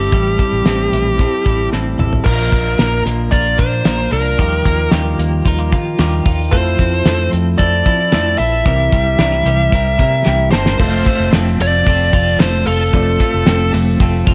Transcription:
Already playing: clean electric guitar G3 C4 E4 A4, lead electric guitar G4
0.12 fingered electric bass A1, clean electric guitar A2 E3 G3 C4 E4 A4, kick, closed hi-hat
0.38 clean electric guitar G3 C4 E4 A4, kick, closed hi-hat
0.53 fingered electric bass A1
0.65 fingered electric bass A1, clean electric guitar A2 E3 G3 C4 E4 A4, snare, closed hi-hat
0.92 fingered electric bass A#1, clean electric guitar E4, closed hi-hat
1.18 clean electric guitar G3 C4 E4 A4, kick, closed hi-hat
1.45 fingered electric bass A1, clean electric guitar G3 C4 E4 A4, kick, closed hi-hat
1.72 fingered electric bass A1, clean electric guitar A2 E3 G3 C4 E4 A4, snare
1.98 fingered electric bass A1, clean electric guitar G3 C4 E4 A4, mid tom
2.13 floor tom
2.24 fingered electric bass A#1, clean electric guitar A#2 F3 A#3 D4 F4 A#4, lead electric guitar A#4, kick, crash
2.51 fingered electric bass A#1, clean electric guitar A#3 D4 F4 A#4, kick, closed hi-hat
2.78 fingered electric bass A#1, clean electric guitar A#2 F3 A#3 D4 F4 A#4, snare, closed hi-hat
3.06 fingered electric bass A#1, clean electric guitar A#3, snare, closed hi-hat
3.31 fingered electric bass A#1, clean electric guitar A#3 D4 F4 A#4, lead electric guitar D5, kick, closed hi-hat
3.58 fingered electric bass A#2, clean electric guitar A#3 D4 F4 A#4, lead electric guitar C5, kick, closed hi-hat
3.85 fingered electric bass A#1, clean electric guitar A#2 F3 A#3 D4 F4 A#4, snare, closed hi-hat
4.11 fingered electric bass C2, clean electric guitar A#3 D4 F4 A#4, lead electric guitar A#4, open hi-hat
4.38 fingered electric bass D#2, clean electric guitar D#3 F3 G3 D#4 F4 G4 A#4, kick, closed hi-hat
4.64 fingered electric bass D#2, clean electric guitar A#3 D#4 F4 A#4, kick, closed hi-hat
4.91 fingered electric bass D#2, clean electric guitar D#3 G3 D#4 F4 G4 A#4, snare, closed hi-hat
5.18 fingered electric bass D#2, clean electric guitar A#3, closed hi-hat
5.45 fingered electric bass D#2, clean electric guitar G3 D#4 F4 A#4, kick, closed hi-hat
5.59 clean electric guitar G4
5.72 fingered electric bass D#3, clean electric guitar D#4 F4 A#4, kick, closed hi-hat
5.99 fingered electric bass D#2, clean electric guitar D#3 G3 D#4 F4 G4 A#4, snare, closed hi-hat
6.25 fingered electric bass D#2, clean electric guitar D#4 F4 A#4, kick, open hi-hat
6.52 fingered electric bass F2, clean electric guitar F3 A3 C4 E4 A4, upright piano E4 F4 A4, lead electric guitar C5, kick, closed hi-hat
6.79 fingered electric bass F2, clean electric guitar C4 E4 A4, kick, closed hi-hat
7.06 fingered electric bass F2, clean electric guitar F3 A3 C4 E4 A4, snare, closed hi-hat
7.33 fingered electric bass F2, clean electric guitar C4, closed hi-hat
7.58 fingered electric bass F2, clean electric guitar A3 C4 E4, lead electric guitar D5, kick, closed hi-hat
7.63 clean electric guitar A4
7.86 fingered electric bass F3, clean electric guitar C4 E4 A4, kick, closed hi-hat
8.12 fingered electric bass F2, clean electric guitar F3 A3 C4 E4 A4, snare, closed hi-hat
8.38 fingered electric bass A#1, clean electric guitar C4 E4 A4, lead electric guitar E5, open hi-hat
8.66 fingered electric bass C2, clean electric guitar C3 E3 G3 C4 E4 G4 A#4, upright piano C4 E4 A#4, kick, closed hi-hat
8.92 fingered electric bass C2, clean electric guitar G3 C4 G4 A#4, kick, closed hi-hat
9.18 fingered electric bass C2, clean electric guitar C3 E3 G3 C4 D4 G4 A#4, snare, closed hi-hat
9.32 clean electric guitar E4
9.46 fingered electric bass C2, clean electric guitar G3, closed hi-hat
9.72 fingered electric bass C2, clean electric guitar G3 C4 E4 G4 A#4, kick, closed hi-hat
9.98 fingered electric bass C3, clean electric guitar G3 A#3 C4 G4 A#4, upright piano E5, kick, closed hi-hat
10.25 fingered electric bass C2, clean electric guitar C3 E3 G3 C4 E4 G4 A#4, upright piano G5, snare
10.51 fingered electric bass G1, clean electric guitar A#3 C4 G4 A#4, lead electric guitar C5, upright piano A5, snare
10.55 clean electric guitar G3
10.66 snare
10.79 fingered electric bass F1, clean electric guitar F3 A3 C4 F4 A4, upright piano C4 F4 A4 C5, kick, crash
11.05 clean electric guitar A3 C4 F4 A4, kick, ride
11.20 fingered electric bass F1
11.33 fingered electric bass F1, clean electric guitar F3 A3 C4 F4 A4, snare, ride
11.60 fingered electric bass F1, clean electric guitar A3, lead electric guitar D5, ride
11.86 fingered electric bass F1, clean electric guitar A3 C4 F4 A4, kick, ride
12.13 fingered electric bass F1, clean electric guitar C4 F4 A4, kick, ride
12.40 fingered electric bass F1, clean electric guitar F3 A3 C4 F4 A4, lead electric guitar C5, snare, ride
12.66 fingered electric bass F1, clean electric guitar C4 F4 A4, lead electric guitar A4, open hi-hat, ride
12.93 fingered electric bass F1, clean electric guitar F3 A3 C4 F4 A4, upright piano C4 F4 A4 D5, kick, hi-hat pedal, ride
13.20 clean electric guitar A3 C4 F4 A4, kick, ride
13.34 fingered electric bass F1
13.46 fingered electric bass F1, clean electric guitar F3 A3 C4 F4 A4, snare, ride
13.73 fingered electric bass F1, clean electric guitar A3, snare, ride
14.00 fingered electric bass F1, clean electric guitar A3 C4 F4 A4, kick, ride
14.26 fingered electric bass F1, clean electric guitar C4 F4 A4, kick, ride

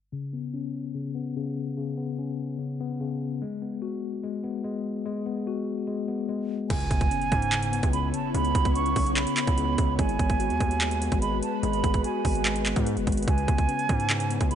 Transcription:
0.12 tine electric piano C#3
0.33 tine electric piano B3
0.54 tine electric piano C#4
0.94 tine electric piano C#3
1.15 tine electric piano B3
1.36 tine electric piano C#3
1.77 tine electric piano C#3
1.97 tine electric piano B3
2.19 tine electric piano C#4
2.59 tine electric piano C#3
2.80 tine electric piano B3
3.00 tine electric piano C#3
3.42 tine electric piano G#3
3.62 tine electric piano B3
3.82 tine electric piano F#4
4.24 tine electric piano G#3
4.44 tine electric piano B3
4.64 tine electric piano G#3
5.06 tine electric piano G#3
5.26 tine electric piano B3
5.47 tine electric piano F#4
5.87 tine electric piano G#3
6.08 tine electric piano B3
6.29 tine electric piano G#3
6.70 808-style bass C#2, tine electric piano C#3, ambient pad B3 E4 C#5, flute G#5, kick, closed hi-hat, crash, impact
6.80 closed hi-hat
6.91 808-style bass C#2, tine electric piano B3, kick, closed hi-hat
7.01 kick, closed hi-hat
7.11 tine electric piano C#4, closed hi-hat
7.22 closed hi-hat
7.32 808-style bass G#2, kick, closed hi-hat
7.42 closed hi-hat
7.52 tine electric piano C#3, clap, closed hi-hat
7.62 closed hi-hat
7.72 tine electric piano B3, closed hi-hat
7.83 808-style bass C#2, kick, closed hi-hat
7.93 tine electric piano C#3, flute B5, closed hi-hat
8.13 flute A5, closed hi-hat
8.34 808-style bass C#2, tine electric piano C#3, flute B5, closed hi-hat
8.45 closed hi-hat
8.55 808-style bass C#2, tine electric piano B3, kick, closed hi-hat
8.65 kick, closed hi-hat
8.75 tine electric piano C#4, flute C#6, closed hi-hat
8.86 closed hi-hat
8.96 808-style bass B1, kick, open hi-hat
9.06 closed hi-hat
9.16 tine electric piano C#3, flute B5, clap, closed hi-hat
9.27 closed hi-hat
9.37 tine electric piano B3, clap, closed hi-hat
9.47 808-style bass C#2, kick, closed hi-hat
9.58 tine electric piano C#3, closed hi-hat
9.78 808-style bass C#2, kick, closed hi-hat
9.99 808-style bass G#1, ambient pad G#3 F#4 B4, tine electric piano G#3, flute G#5, kick, closed hi-hat
10.09 closed hi-hat
10.19 808-style bass G#1, tine electric piano B3, kick, closed hi-hat
10.30 kick, closed hi-hat
10.39 tine electric piano F#4, closed hi-hat
10.50 808-style bass D#2, closed hi-hat
10.60 808-style bass D#2, kick, closed hi-hat
10.71 closed hi-hat
10.81 tine electric piano G#3, clap, closed hi-hat
10.91 closed hi-hat
11.01 tine electric piano B3, closed hi-hat
11.12 808-style bass G#1, kick, closed hi-hat
11.22 tine electric piano G#3, flute B5, closed hi-hat
11.43 flute A5, closed hi-hat
11.63 808-style bass G#1, tine electric piano G#3, flute B5, closed hi-hat
11.73 closed hi-hat
11.83 808-style bass G#1, tine electric piano B3, kick, closed hi-hat
11.94 kick, closed hi-hat
12.04 tine electric piano F#4, flute G#5, closed hi-hat
12.25 808-style bass G#1, kick, open hi-hat
12.35 closed hi-hat
12.45 tine electric piano G#3, clap, closed hi-hat
12.56 closed hi-hat
12.65 tine electric piano B3, clap, closed hi-hat
12.76 808-style bass G#2, kick, closed hi-hat
12.86 tine electric piano G#3, closed hi-hat
12.97 808-style bass F#1, closed hi-hat
13.07 808-style bass G#1, kick, closed hi-hat
13.12 closed hi-hat
13.17 closed hi-hat
13.23 closed hi-hat
13.27 808-style bass C#2, tine electric piano C#3, ambient pad B3 E4 C#5, flute G#5, kick, closed hi-hat
13.38 closed hi-hat
13.48 808-style bass C#2, tine electric piano B3, kick, closed hi-hat
13.58 kick, closed hi-hat
13.69 tine electric piano C#4, closed hi-hat
13.79 closed hi-hat
13.89 808-style bass G#2, kick, closed hi-hat
14.00 closed hi-hat
14.09 tine electric piano C#3, clap, closed hi-hat
14.20 closed hi-hat
14.30 tine electric piano B3, closed hi-hat
14.41 808-style bass C#2, kick, closed hi-hat
14.51 tine electric piano C#3, flute B5, closed hi-hat

